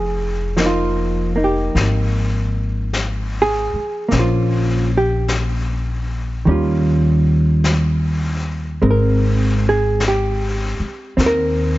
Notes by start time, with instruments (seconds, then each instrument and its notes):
Already playing: upright bass F1, hollow-body jazz guitar G#4
0.57 hollow-body jazz guitar F3 A#3 D#4, brush sweep, snare, hi-hat pedal
0.66 hollow-body jazz guitar F4
1.36 hollow-body jazz guitar A#3 D#4
1.44 hollow-body jazz guitar G4
1.75 upright bass G#1, brush sweep, snare
2.93 brush sweep, snare, hi-hat pedal
3.42 hollow-body jazz guitar G#4
3.74 muted upright bass stroke
4.09 upright bass A#1, hollow-body jazz guitar A#3, brush sweep, snare
4.13 hollow-body jazz guitar C#4
4.19 hollow-body jazz guitar F4 C5
4.97 hollow-body jazz guitar G4
5.28 brush sweep, snare, hi-hat pedal
6.45 upright bass D#2, hollow-body jazz guitar D#3 G3 C#4, brush sweep
6.51 hollow-body jazz guitar F4
7.64 brush sweep, snare, hi-hat pedal
8.82 upright bass G#1, hollow-body jazz guitar G#3 C4 A#4, brush sweep
8.90 hollow-body jazz guitar A#4
9.69 hollow-body jazz guitar G#4
10.00 brush sweep, snare, hi-hat pedal
10.08 hollow-body jazz guitar G4
10.80 muted upright bass stroke
11.17 upright bass D#2, hollow-body jazz guitar C4 A#4, brush sweep, snare
11.26 hollow-body jazz guitar A#4